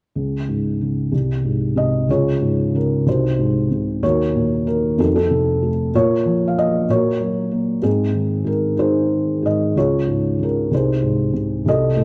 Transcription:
felt piano
0.15 C#2
0.48 G#2
0.81 C#3
1.12 C2
1.45 G#2
1.76 C3 D#5
2.09 C#2 F4 G#4 C#5
2.41 G#2
2.74 C#3 A#4
3.06 C2 D#4 F#4 C5
3.39 G#2
3.71 C3
4.03 D#2 F#4 A#4 C#5
4.36 A#2
4.67 D#3 A#4
4.98 F2 C4 D#4 A4
5.05 F#4
5.16 C4 D#4 A4
5.30 C3
5.63 A3
5.94 A#2 F4 A#4 C#5
6.25 F3
6.48 F5
6.58 A#3 D#5
6.89 A#2 F#4 A#4 C#5
7.21 F#3
7.51 A#3
7.82 G#2 C4 D#4 G#4
8.13 D#3
8.45 G#2 A#4
8.77 D#3 D#4 G#4 C5
9.43 G#2 D#5
9.76 C#2 F4 G#4 C#5
10.08 G#2
10.39 C#3 A#4
10.71 C2 D#4 G#4 C5
11.03 G#2
11.33 C3
11.65 C2 A4 D#5
11.97 A2

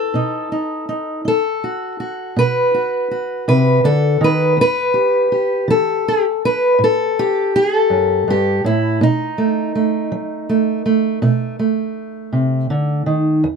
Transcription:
steel-string acoustic guitar
Already playing: E4 A4
0.14 B2 D#4
0.52 D#4
0.89 D#4
1.25 D#4 A4
1.64 F#4
2.00 F#4
2.36 B2 B4
2.74 F#4
3.11 F#4
3.48 C3 B4
3.84 D3 A4
4.21 D#3 B4
4.57 E2
4.61 B4
4.94 G4
5.32 G4
5.68 E3 A4
6.08 G4
6.45 B4
6.79 A2
6.84 A4
7.19 G4
7.56 G#4
7.76 A4
7.90 F#2
8.28 G2 G4
8.64 A2 E4
9.01 B2 D#4
9.38 A3
9.75 A3
10.12 F#3
10.49 A3
10.86 A3
11.22 B2 A3
11.59 A3
12.33 C3
12.70 D3
13.06 D#3
13.44 E2

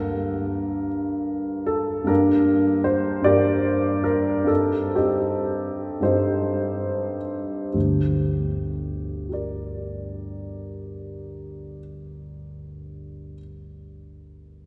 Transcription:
upright piano
Already playing: G2 G3 A#3 D4 A#4
1.66 A4
2.04 G2 G3 A#3 D4 A#4
2.09 G4
2.84 C5
3.22 G2 G3 A#3 D4 G4 A#4 D5
4.04 A#4
4.44 G2 G3 C4 D#4 A4
4.95 C4 D#4 G4
6.00 G2 G3 C4 D#4 G4 C5
7.73 G1 D2 G4
9.29 G4 A#4
9.33 D5

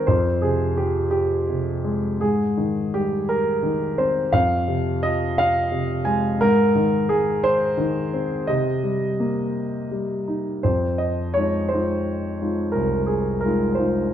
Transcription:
grand piano
0.07 F2 C5
0.42 C3 G#4
0.77 F3 G4
1.11 G4
1.49 C3
1.84 G#3
2.20 G#2 G#4
2.57 D#3
2.94 G3 G4
3.29 A#4
3.63 D#3
3.98 C4 C5
4.33 F2 F5
4.68 C3
5.02 F3 D#5
5.38 F5
5.71 C3
6.05 G#3 G#5
6.40 G#2 A#4
6.75 D#3
7.09 G#3 G#4
7.44 C5
7.77 D#3
8.14 C4
8.47 C3 D#5
8.83 G3
9.20 A#3
9.91 G3
10.28 D#4
10.63 F2 C5
10.98 D#5
11.34 G#3 D#4 F4 C#5
11.69 G#3 D#4 C5
11.73 F4
12.41 G#3 D#4 F4
12.72 C2 A#4
13.06 G#4
13.41 G#3 A#4
13.45 D#4 F4
13.75 G#3 D#4 F4 C5

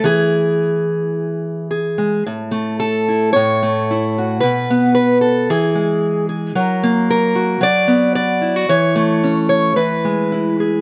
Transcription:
steel-string acoustic guitar
0.04 E3 G#4
1.71 G#4
1.98 G#3
2.26 A2
2.51 A3
2.80 A4
3.08 E4
3.33 A2 C#5
3.63 A3
3.91 E4
4.18 F#4
4.40 B2 B4
4.70 B3
4.95 B4
5.21 A4
5.50 E3 G#4
5.75 G#3
6.29 G#4
6.55 F#3 A#4
6.83 A#3
7.10 A#4
7.35 F#4
7.61 F#3 D5
7.88 B3
8.15 D5
8.41 E4
8.56 F#4
8.69 E3 C#5
8.95 A3
9.24 C#4
9.49 C#5
9.76 E3 B4
10.05 G#3
10.32 E4
10.60 G#4

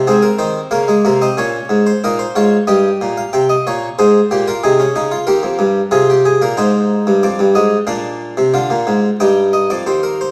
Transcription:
harpsichord
0.07 G#2 C4 G#4
0.22 A#4
0.39 D#3 C5
0.71 C#3 A#3 F5
0.88 G#3
1.05 C3 A#3
1.22 C4 D#5
1.37 A#2 C#4 C#5
1.69 G#2
1.87 C5
2.04 A#2 D#4 A#4
2.19 C5
2.36 G#2 F4 C#5
2.67 G2 G4 D#5
3.01 A#2
3.17 F5
3.33 C3 G5
3.50 D#5
3.67 A#2 C#5
3.99 G#2 G#4 C5
4.31 A#2 G4
4.48 F4 A#4
4.63 C3 D#4 G#4
4.80 C#4
4.96 C#3 D#4
5.11 F4
5.27 D#2 G4 A#4
5.43 F2
5.59 G2
5.91 C3 F4 G#4
6.10 G4
6.25 G#4
6.42 A#2 A#4
6.57 G#2 D#4 C5
7.07 G2
7.23 F2 D5
7.39 G2
7.55 G#2 D#5
7.87 A#2 D4 F5
8.37 C3
8.54 D3 F4
8.70 A#2
8.87 G#2
9.20 G2 D#4 G5
9.53 D#5
9.70 F2 D5
9.86 D#2 C5
10.03 A#4
10.21 C5

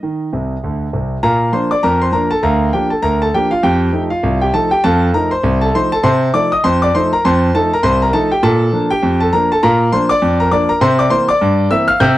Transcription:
grand piano
Already playing: D#5
0.03 D#3
0.33 C2 C3
0.63 D2 D3
0.93 C2 C3
1.23 A#2 A#4 F5 A#5
1.53 F3 A#3 D4 C5 C6
1.71 D5 D6
1.83 F2 A#4 A#5
2.02 C5 C6
2.12 F3 A#3 D4 A#4 A#5
2.31 A4 A5
2.43 D2 A#4 F5 A#5
2.73 F3 A#3 D4 G4 G5
2.90 A4 A5
3.02 D2 A#4 A#5
3.22 A4 A5
3.34 F3 A#3 D4 G4 G5
3.51 F4 F5
3.63 F2 G4 G5
3.93 F3 A3 D#4
4.10 F4 F5
4.23 C2
4.41 G4 G5
4.54 F3 A3 D#4 A4 A5
4.71 G4 G5
4.84 F2 A4 F5 A5
5.14 F3 A3 D#4 A#4 A#5
5.31 C5 C6
5.43 C2
5.61 A4 A5
5.75 F3 A3 D#4 C5 C6
5.92 A4 A5
6.03 C3 C5 A5 C6
6.34 F3 A3 D#4 D5 D6
6.52 D#5 D#6
6.64 F2 C5 C6
6.82 D5 D6
6.95 F3 A3 D#4 C5 C6
7.13 A#4 A#5
7.25 F2 C5 A5 C6
7.55 F3 A3 D#4 A4 A5
7.73 A#4 A#5
7.83 C2 C5 C6
8.02 A#4 A#5
8.13 F3 A3 D#4 A4 A5
8.32 G4 G5
8.43 A#2 A4 A5
8.73 F3 A#3 D4
8.91 G4 G5
9.03 F2
9.20 A4 A5
9.33 F3 A#3 D4 A#4 A#5
9.52 A4 A5
9.63 A#2 A#4 F5 A#5
9.92 F3 A#3 D4 C5 C6
10.09 D5 D6
10.22 F2
10.40 A#4 A#5
10.51 F3 A#3 D4 D5 D6
10.69 A#4 A#5
10.81 C3 C5 C6
10.99 D5 D6
11.10 E3 A#3 C4 C5 C6
11.29 D5 D6
11.41 G2
11.70 E3 A#3 C4 E5 E6
11.88 F5 F6
12.00 C3 G5 E6 G6

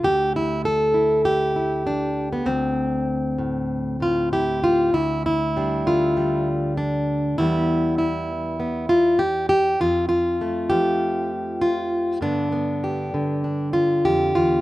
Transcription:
steel-string acoustic guitar
0.03 D2 G4
0.36 E4
0.65 A4
0.94 E4
1.25 G4
1.56 E4
1.87 D4
2.33 B3
2.46 D2 C4
3.39 A2
4.00 A2 F4
4.33 E4 G4
4.64 F4
4.94 D2 E4
5.26 E4
5.57 G3 D4
5.87 D3 F4
6.17 G3
6.77 D4
7.38 E2 E3 G3 B3 E4
7.98 E4
8.60 B3
8.89 F4
9.19 G4
9.49 G4
9.80 F2 F4
10.09 F4
10.41 A3
10.70 F3 G4
11.61 F4
12.21 G2 D3 B3 D4
12.52 B3
12.84 G4
13.14 D3
13.44 D4
13.73 F4
14.05 F2 G4
14.35 E2 F4

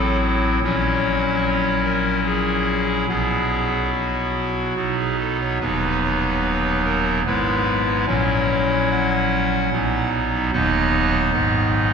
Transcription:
pipe organ
Already playing: A1 A2 F#3 C4 E4 A4
0.63 A#1 A#2 F#3 C#4 E4 C#5
1.84 A#4
2.26 G#4
3.08 B1 B2 F#3 B3 E4 G#4
3.93 F#4
4.76 B1 B2 F#3 B3 D#4
4.97 G#4
5.19 A4
5.40 C#5
5.60 D#1 D#2 F#3 B3 D#4 B4
6.84 A#4
7.26 G#1 G#2 G#3 B3 E4 B4
8.07 A#1 A#2 F#3 C#4 E4 C#5
8.91 F#5
9.72 B1 B2 F#3 B3 D#4
10.53 D#1 D#2 F#3 B3 D#4 D#5
11.33 G#1 G#2 D#3 B3 D#4

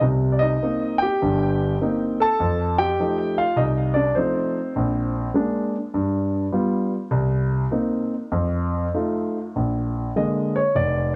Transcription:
grand piano
0.01 C2 C3 D#4
0.32 D5
0.39 D#4 D#5
0.63 A#3 C4 D#4
0.98 G4 G5
1.22 G1 G2
1.81 A#3 C4 D#4
2.20 A4 A5
2.40 F2
2.78 G4 G5
3.00 F3 A3 D#4
3.38 F4 F5
3.56 C2 D#4 D#5
3.94 D4 D5
4.15 F3 A3 C4 D#4 C5
4.76 A#1
5.34 G#3 A#3 D4
5.94 G2
6.52 G3 B3 F4
7.11 C2
7.71 A#3 C4 D#4
8.32 F2
8.94 A3 D#4 F4
9.56 A#1
10.16 D3 G#3 A#3 D#5
10.56 C#5
10.75 F1 D5

